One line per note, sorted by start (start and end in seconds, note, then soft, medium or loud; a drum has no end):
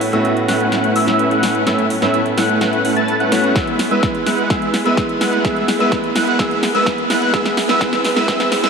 0.00 0.12 A2 medium
0.00 0.10 A3 medium
0.00 0.10 B3 medium
0.00 0.10 C#4 medium
0.00 0.11 E4 loud
0.00 open hi-hat loud
0.00 riser medium
0.12 1.63 A2 loud
0.12 1.64 A3 medium
0.12 0.31 A3 loud
0.12 1.64 B3 medium
0.12 0.31 C#4 medium
0.12 1.64 C#4 medium
0.12 0.31 E4 medium
0.12 1.64 F#4 loud
0.12 0.31 B4 medium
0.12 0.31 E5 loud
0.12 0.31 E6 loud
0.12 closed hi-hat soft
0.25 closed hi-hat medium
0.37 closed hi-hat soft
0.48 0.93 A3 medium
0.48 0.93 C#4 medium
0.48 0.93 E4 medium
0.48 0.93 B4 medium
0.48 0.93 F#5 medium
0.48 0.93 F#6 medium
0.48 snare medium
0.48 open hi-hat loud
0.60 closed hi-hat soft
0.72 snare medium
0.72 closed hi-hat medium
0.84 closed hi-hat soft
0.96 1.28 A3 medium
0.96 1.28 C#4 medium
0.96 1.28 E4 medium
0.96 1.28 B4 medium
0.96 1.28 E5 loud
0.96 1.28 E6 loud
0.96 open hi-hat loud
1.08 snare medium
1.19 closed hi-hat medium
1.31 1.64 A3 medium
1.31 1.64 C#4 medium
1.31 1.64 E4 medium
1.31 1.64 B4 medium
1.31 1.64 F#5 medium
1.31 1.64 F#6 medium
1.31 closed hi-hat soft
1.43 snare medium
1.43 open hi-hat loud
1.55 closed hi-hat soft
1.66 1.99 A2 medium
1.66 1.99 A3 medium
1.66 1.85 A3 medium
1.66 1.99 B3 medium
1.66 1.85 C#4 medium
1.66 1.99 C#4 medium
1.66 1.85 E4 medium
1.66 2.00 E4 medium
1.66 1.85 B4 medium
1.66 1.85 E5 medium
1.66 1.85 E6 medium
1.66 snare medium
1.66 closed hi-hat medium
1.79 closed hi-hat soft
1.90 open hi-hat loud
2.01 3.29 A2 medium
2.01 3.29 A3 medium
2.01 2.20 A3 loud
2.01 3.29 B3 medium
2.01 2.20 C#4 medium
2.01 3.30 C#4 medium
2.01 2.20 E4 medium
2.01 3.30 E4 medium
2.01 2.20 B4 medium
2.01 2.20 E5 loud
2.01 2.20 E6 loud
2.01 snare medium
2.01 closed hi-hat soft
2.14 closed hi-hat medium
2.26 closed hi-hat soft
2.38 2.82 A3 medium
2.38 2.82 C#4 medium
2.38 2.82 E4 medium
2.38 2.82 B4 medium
2.38 2.82 F#5 medium
2.38 2.82 F#6 medium
2.38 snare medium
2.38 open hi-hat loud
2.49 closed hi-hat soft
2.61 snare medium
2.61 closed hi-hat medium
2.73 closed hi-hat soft
2.85 2.94 A3 medium
2.85 2.94 C#4 medium
2.85 2.94 E4 medium
2.85 2.94 B4 medium
2.85 2.94 F#5 medium
2.85 2.94 F#6 medium
2.85 open hi-hat loud
2.97 3.15 A3 medium
2.97 3.15 C#4 medium
2.97 3.15 E4 medium
2.97 3.15 B4 medium
2.97 3.15 A5 loud
2.97 3.15 A6 loud
2.97 closed hi-hat soft
3.08 closed hi-hat medium
3.20 3.53 A3 medium
3.20 3.53 C#4 medium
3.20 3.53 E4 medium
3.20 3.53 B4 medium
3.20 3.53 F#5 loud
3.20 3.53 F#6 loud
3.20 closed hi-hat soft
3.31 3.53 A3 loud
3.31 3.53 B3 medium
3.31 3.53 C#4 medium
3.31 3.53 F#4 loud
3.31 snare medium
3.31 open hi-hat loud
3.44 closed hi-hat soft
3.55 3.88 G#3 medium
3.55 3.74 G#3 medium
3.55 3.88 B3 medium
3.55 3.74 B3 medium
3.55 3.74 E4 medium
3.55 3.88 E4 medium
3.55 3.89 G#4 medium
3.55 3.74 B4 medium
3.55 3.74 E5 medium
3.55 3.74 E6 medium
3.55 kick loud
3.55 snare medium
3.55 closed hi-hat medium
3.67 closed hi-hat soft
3.79 snare medium
3.79 open hi-hat loud
3.90 4.48 G#3 medium
3.90 4.09 G#3 medium
3.90 4.48 B3 medium
3.90 4.09 B3 medium
3.90 4.09 E4 medium
3.90 4.48 E4 medium
3.90 4.09 B4 medium
3.90 4.49 B4 loud
3.90 4.09 E5 loud
3.90 4.09 E6 loud
4.03 kick loud
4.03 snare medium
4.03 closed hi-hat medium
4.15 closed hi-hat soft
4.26 4.48 G#3 medium
4.26 4.48 B3 medium
4.26 4.48 E4 medium
4.26 4.48 B4 medium
4.26 4.48 F#5 medium
4.26 4.48 F#6 medium
4.26 snare medium
4.26 open hi-hat loud
4.38 closed hi-hat soft
4.50 4.82 G#3 medium
4.50 4.68 G#3 medium
4.50 4.83 B3 medium
4.50 4.68 B3 medium
4.50 4.68 E4 medium
4.50 4.83 E4 medium
4.50 4.83 G#4 medium
4.50 4.68 B4 medium
4.50 4.68 E5 medium
4.50 4.68 E6 medium
4.50 kick loud
4.50 snare medium
4.50 closed hi-hat medium
4.62 closed hi-hat soft
4.74 snare medium
4.74 open hi-hat loud
4.84 5.42 G#3 medium
4.84 5.04 G#3 loud
4.84 5.43 B3 medium
4.84 5.04 B3 medium
4.84 5.04 E4 medium
4.84 5.43 E4 medium
4.84 5.04 B4 medium
4.84 5.43 B4 loud
4.84 5.04 E5 loud
4.84 5.04 E6 loud
4.84 closed hi-hat soft
4.97 kick loud
4.97 snare medium
4.97 closed hi-hat medium
5.09 closed hi-hat soft
5.21 5.43 G#3 medium
5.21 5.43 B3 medium
5.21 5.43 E4 medium
5.21 5.43 B4 medium
5.21 5.43 F#5 medium
5.21 5.43 F#6 medium
5.21 snare medium
5.21 open hi-hat loud
5.33 closed hi-hat soft
5.44 5.77 G#3 medium
5.44 5.63 G#3 medium
5.44 5.77 B3 medium
5.44 5.63 B3 medium
5.44 5.63 E4 medium
5.44 5.77 E4 medium
5.44 5.78 G#4 medium
5.44 5.63 B4 medium
5.44 5.63 E5 medium
5.44 5.63 E6 medium
5.44 kick loud
5.44 snare medium
5.44 closed hi-hat medium
5.56 closed hi-hat soft
5.68 snare medium
5.68 open hi-hat loud
5.79 6.37 G#3 medium
5.79 5.98 G#3 loud
5.79 6.37 B3 medium
5.79 5.98 B3 medium
5.79 5.98 E4 medium
5.79 6.37 E4 medium
5.79 5.98 B4 medium
5.79 6.38 B4 loud
5.79 5.98 E5 loud
5.79 5.98 E6 loud
5.92 kick loud
5.92 snare medium
5.92 closed hi-hat medium
6.04 closed hi-hat soft
6.16 6.37 G#3 medium
6.16 6.37 B3 medium
6.16 6.37 E4 medium
6.16 6.37 B4 medium
6.16 6.37 F#5 medium
6.16 6.37 F#6 medium
6.16 snare medium
6.16 open hi-hat loud
6.27 closed hi-hat soft
6.39 6.71 G#3 medium
6.39 6.57 G#3 medium
6.39 6.72 B3 medium
6.39 6.57 B3 medium
6.39 6.57 E4 medium
6.39 6.72 E4 medium
6.39 6.72 G#4 loud
6.39 6.57 B4 medium
6.39 6.57 E5 medium
6.39 6.58 E6 medium
6.39 kick loud
6.39 snare medium
6.39 closed hi-hat medium
6.51 closed hi-hat soft
6.63 snare medium
6.63 open hi-hat loud
6.73 7.31 G#3 medium
6.73 6.93 G#3 medium
6.73 7.32 B3 medium
6.73 6.93 B3 medium
6.73 6.93 E4 medium
6.73 7.32 E4 medium
6.73 6.93 B4 medium
6.73 7.32 B4 loud
6.73 6.93 E5 loud
6.73 6.93 E6 loud
6.73 closed hi-hat soft
6.86 kick loud
6.86 snare medium
6.86 closed hi-hat medium
6.98 closed hi-hat soft
7.10 7.32 G#3 medium
7.10 7.32 B3 medium
7.10 7.32 E4 medium
7.10 7.32 B4 medium
7.10 7.32 F#5 medium
7.10 7.32 F#6 medium
7.10 snare medium
7.10 open hi-hat loud
7.22 closed hi-hat soft
7.33 7.66 G#3 medium
7.33 7.52 G#3 medium
7.33 7.66 B3 medium
7.33 7.52 B3 medium
7.33 7.52 E4 medium
7.33 7.66 E4 medium
7.33 7.67 G#4 medium
7.33 7.52 B4 medium
7.33 7.52 E5 medium
7.33 7.52 E6 medium
7.33 kick loud
7.33 snare medium
7.33 closed hi-hat medium
7.45 snare medium
7.45 closed hi-hat soft
7.57 snare loud
7.57 open hi-hat loud
7.68 7.78 G#3 medium
7.68 7.79 G#3 medium
7.68 7.79 B3 medium
7.68 7.79 E4 medium
7.68 7.79 B4 medium
7.68 7.80 B4 loud
7.68 7.79 E5 loud
7.68 7.79 E6 loud
7.68 snare medium
7.68 closed hi-hat soft
7.80 8.13 G#3 medium
7.80 7.99 G#3 medium
7.80 8.13 B3 medium
7.80 7.99 B3 medium
7.80 7.99 E4 medium
7.80 8.14 E4 medium
7.80 8.14 G#4 medium
7.80 7.99 B4 medium
7.80 7.99 E5 medium
7.80 7.99 E6 medium
7.80 kick loud
7.80 snare medium
7.80 closed hi-hat medium
7.93 snare medium
7.93 closed hi-hat soft
8.05 snare loud
8.05 open hi-hat loud
8.15 8.26 G#3 loud
8.15 8.26 B3 medium
8.15 8.26 E4 medium
8.15 8.26 B4 medium
8.15 8.27 B4 loud
8.15 8.26 E5 loud
8.15 8.26 E6 loud
8.15 snare medium
8.28 8.60 G#3 medium
8.28 8.46 G#3 medium
8.28 8.61 B3 medium
8.28 8.46 B3 medium
8.28 8.46 E4 medium
8.28 8.61 E4 medium
8.28 8.61 G#4 loud
8.28 8.46 B4 medium
8.28 8.46 E5 medium
8.28 8.46 E6 loud
8.28 kick loud
8.28 snare loud
8.28 closed hi-hat medium
8.40 snare medium
8.40 closed hi-hat soft
8.52 snare medium
8.52 open hi-hat loud
8.62 8.70 G#3 medium
8.62 8.70 B3 medium
8.62 8.70 E4 medium
8.62 8.70 B4 medium
8.62 8.70 B4 loud
8.62 8.70 E5 loud
8.62 8.70 E6 loud
8.62 snare medium
8.62 closed hi-hat soft